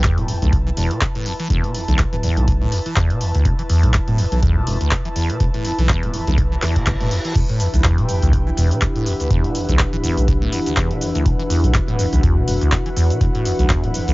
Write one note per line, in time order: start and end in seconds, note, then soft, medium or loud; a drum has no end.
0.00 0.10 B1 medium
0.00 0.19 E2 medium
0.00 14.14 E4 medium
0.00 14.14 B4 medium
0.00 7.81 A5 medium
0.00 kick loud
0.00 clap loud
0.00 closed hi-hat medium
0.18 0.35 D1 medium
0.18 0.30 B2 medium
0.18 closed hi-hat soft
0.28 0.40 E2 medium
0.28 open hi-hat loud
0.42 0.72 B1 medium
0.42 0.54 D2 medium
0.42 closed hi-hat soft
0.53 0.57 E2 loud
0.53 kick loud
0.53 closed hi-hat medium
0.67 0.70 E3 medium
0.77 0.87 E1 loud
0.77 0.93 E2 loud
0.77 open hi-hat loud
0.91 1.00 B2 medium
0.91 closed hi-hat soft
1.01 1.06 E2 medium
1.01 kick loud
1.01 clap loud
1.01 closed hi-hat medium
1.15 1.27 A2 medium
1.15 closed hi-hat soft
1.26 1.33 E2 loud
1.26 open hi-hat loud
1.40 1.48 E3 medium
1.40 closed hi-hat soft
1.50 1.60 E1 loud
1.50 1.66 E2 loud
1.50 kick loud
1.50 closed hi-hat medium
1.64 1.76 B2 medium
1.64 closed hi-hat soft
1.75 1.86 E2 medium
1.75 open hi-hat medium
1.88 2.05 B1 medium
1.88 2.00 D2 medium
1.88 closed hi-hat soft
1.98 2.04 E2 loud
1.98 kick loud
1.98 clap loud
1.98 closed hi-hat medium
2.13 2.30 D1 medium
2.13 2.16 E3 medium
2.13 closed hi-hat soft
2.23 2.39 E2 loud
2.23 open hi-hat loud
2.37 2.68 B1 medium
2.37 2.46 B2 medium
2.37 closed hi-hat soft
2.48 2.52 E2 medium
2.48 kick loud
2.48 closed hi-hat medium
2.62 2.74 A2 medium
2.72 2.80 E2 loud
2.72 open hi-hat loud
2.86 2.95 E3 medium
2.86 closed hi-hat medium
2.96 3.12 E2 loud
2.96 kick loud
2.96 clap loud
2.96 closed hi-hat medium
3.10 3.22 B2 medium
3.10 closed hi-hat soft
3.21 3.32 E2 medium
3.21 open hi-hat loud
3.35 3.47 D2 loud
3.35 closed hi-hat medium
3.45 3.55 E1 loud
3.45 3.50 E2 loud
3.45 kick loud
3.45 closed hi-hat medium
3.59 3.63 E3 medium
3.59 closed hi-hat soft
3.70 3.85 E2 loud
3.70 open hi-hat medium
3.83 4.00 B1 medium
3.83 3.92 B2 medium
3.83 closed hi-hat medium
3.94 3.99 E2 medium
3.94 kick loud
3.94 clap loud
3.94 closed hi-hat medium
4.08 4.25 D1 medium
4.08 4.20 A2 medium
4.08 closed hi-hat soft
4.18 4.26 E2 loud
4.18 open hi-hat loud
4.32 4.63 B1 medium
4.32 4.41 E3 medium
4.32 closed hi-hat medium
4.43 4.58 E2 loud
4.43 kick loud
4.43 closed hi-hat medium
4.56 4.69 B2 medium
4.67 4.77 E1 loud
4.67 4.79 E2 medium
4.67 open hi-hat loud
4.81 4.93 D2 loud
4.81 closed hi-hat medium
4.91 4.96 E2 loud
4.91 kick loud
4.91 clap loud
4.91 closed hi-hat medium
5.05 5.09 E3 medium
5.05 closed hi-hat soft
5.16 5.31 E2 loud
5.16 open hi-hat loud
5.30 5.39 B2 medium
5.30 closed hi-hat medium
5.40 5.51 E1 loud
5.40 5.45 E2 medium
5.40 kick loud
5.40 closed hi-hat medium
5.54 5.66 A2 medium
5.54 closed hi-hat soft
5.65 5.72 E2 loud
5.65 open hi-hat loud
5.79 5.96 B1 medium
5.79 5.87 E3 medium
5.79 closed hi-hat medium
5.89 6.04 E2 loud
5.89 kick loud
5.89 clap loud
5.89 closed hi-hat medium
6.03 6.20 D1 medium
6.03 6.15 B2 medium
6.03 closed hi-hat soft
6.14 6.25 E2 medium
6.14 open hi-hat loud
6.27 6.58 B1 medium
6.27 6.39 D2 loud
6.27 closed hi-hat medium
6.38 6.43 E2 loud
6.38 kick loud
6.38 closed hi-hat medium
6.38 reverse cymbal medium
6.52 6.55 E3 medium
6.62 6.78 E2 loud
6.62 clap medium
6.62 open hi-hat loud
6.76 6.85 B2 medium
6.76 kick medium
6.76 closed hi-hat medium
6.86 6.97 G1 medium
6.86 6.91 E2 medium
6.86 kick loud
6.86 clap loud
6.86 closed hi-hat medium
7.01 7.08 E1 medium
7.01 7.13 A2 medium
7.01 closed hi-hat soft
7.11 7.19 E2 loud
7.11 open hi-hat loud
7.25 7.34 E3 medium
7.25 closed hi-hat medium
7.35 7.46 E1 loud
7.35 7.40 E2 medium
7.35 14.14 E3 medium
7.35 14.14 D4 medium
7.35 11.25 G4 medium
7.35 kick loud
7.35 closed hi-hat medium
7.35 crash medium
7.35 shaker soft
7.49 7.61 A2 medium
7.49 closed hi-hat soft
7.60 7.68 E2 loud
7.60 open hi-hat loud
7.60 shaker medium
7.74 7.91 B1 medium
7.74 7.82 D2 medium
7.74 closed hi-hat medium
7.74 shaker soft
7.79 9.00 G5 medium
7.84 8.00 E2 loud
7.84 kick loud
7.84 clap loud
7.84 closed hi-hat medium
7.84 shaker soft
7.98 8.15 D1 medium
7.98 8.10 B2 medium
7.98 closed hi-hat soft
8.09 8.20 E2 medium
8.09 open hi-hat loud
8.09 shaker medium
8.22 8.53 B1 medium
8.22 8.35 D2 loud
8.22 closed hi-hat medium
8.22 shaker soft
8.33 8.38 E2 loud
8.33 kick loud
8.33 closed hi-hat medium
8.33 shaker soft
8.47 8.50 E3 medium
8.57 8.68 E1 loud
8.57 8.73 E2 loud
8.57 open hi-hat loud
8.57 shaker medium
8.71 8.80 B2 medium
8.71 closed hi-hat medium
8.71 shaker soft
8.81 8.86 E2 medium
8.81 14.14 F#5 medium
8.81 kick loud
8.81 clap loud
8.81 closed hi-hat medium
8.81 shaker soft
8.96 9.08 A2 medium
8.96 closed hi-hat soft
9.06 9.14 E2 loud
9.06 open hi-hat loud
9.06 shaker medium
9.20 9.29 D2 medium
9.20 closed hi-hat medium
9.20 shaker soft
9.31 9.41 E1 loud
9.31 9.46 E2 loud
9.31 kick loud
9.31 closed hi-hat medium
9.31 shaker soft
9.44 9.56 B2 medium
9.44 closed hi-hat soft
9.55 9.66 E2 medium
9.55 open hi-hat loud
9.55 shaker medium
9.69 9.86 B1 medium
9.69 9.81 D2 loud
9.69 closed hi-hat medium
9.69 shaker soft
9.79 9.84 E2 loud
9.79 kick loud
9.79 clap loud
9.79 closed hi-hat medium
9.79 shaker soft
9.93 10.10 D1 medium
9.93 9.97 E3 medium
9.93 closed hi-hat soft
10.04 10.19 E2 loud
10.04 open hi-hat loud
10.04 shaker medium
10.18 10.48 B1 medium
10.18 10.26 B2 medium
10.18 closed hi-hat medium
10.18 shaker soft
10.28 10.33 E2 medium
10.28 kick loud
10.28 closed hi-hat medium
10.28 shaker soft
10.42 10.54 A2 medium
10.52 10.60 E2 loud
10.52 open hi-hat loud
10.52 shaker medium
10.66 10.75 D2 medium
10.66 closed hi-hat medium
10.66 shaker soft
10.77 10.92 E2 loud
10.77 kick loud
10.77 clap loud
10.77 closed hi-hat medium
10.77 shaker soft
10.91 11.03 B2 medium
10.91 closed hi-hat soft
11.01 11.13 E2 medium
11.01 open hi-hat loud
11.01 shaker medium
11.15 11.27 D2 loud
11.15 closed hi-hat medium
11.15 shaker soft
11.26 11.36 E1 medium
11.26 11.30 E2 loud
11.26 14.14 F#4 medium
11.26 kick loud
11.26 closed hi-hat medium
11.26 shaker soft
11.39 11.43 E3 medium
11.39 closed hi-hat soft
11.50 11.65 E2 loud
11.50 open hi-hat loud
11.50 shaker medium
11.64 11.81 B1 medium
11.64 11.73 B2 medium
11.64 closed hi-hat soft
11.64 shaker soft
11.74 11.79 E2 medium
11.74 kick loud
11.74 clap loud
11.74 closed hi-hat medium
11.74 shaker soft
11.88 12.05 D1 medium
11.88 12.00 A2 medium
11.88 closed hi-hat soft
11.99 12.07 E2 loud
11.99 open hi-hat loud
11.99 shaker medium
12.13 12.43 B1 medium
12.13 12.21 D2 medium
12.13 closed hi-hat soft
12.13 shaker soft
12.23 12.39 E2 loud
12.23 kick loud
12.23 closed hi-hat medium
12.23 shaker soft
12.37 12.49 B2 medium
12.48 12.58 E1 loud
12.48 12.59 E2 medium
12.48 open hi-hat loud
12.48 shaker medium
12.62 12.74 D2 loud
12.62 closed hi-hat medium
12.62 shaker soft
12.72 12.77 E2 loud
12.72 kick loud
12.72 clap loud
12.72 closed hi-hat medium
12.72 shaker soft
12.86 12.89 E3 medium
12.86 closed hi-hat soft
12.97 13.12 E2 loud
12.97 open hi-hat loud
12.97 shaker medium
13.10 13.19 B2 medium
13.10 closed hi-hat soft
13.10 shaker soft
13.21 13.31 E1 loud
13.21 13.26 E2 medium
13.21 kick loud
13.21 closed hi-hat medium
13.21 shaker soft
13.35 13.47 A2 medium
13.35 closed hi-hat soft
13.45 13.53 E2 loud
13.45 open hi-hat loud
13.45 shaker medium
13.59 13.76 B1 medium
13.59 13.68 D2 medium
13.59 closed hi-hat soft
13.59 shaker soft
13.69 13.85 E2 loud
13.69 kick loud
13.69 clap loud
13.69 closed hi-hat medium
13.69 shaker soft
13.84 14.00 D1 medium
13.84 13.96 B2 medium
13.84 closed hi-hat soft
13.94 14.05 E2 medium
13.94 open hi-hat loud
13.94 shaker medium
14.08 14.14 B1 medium
14.08 14.14 D2 loud
14.08 closed hi-hat soft
14.08 shaker soft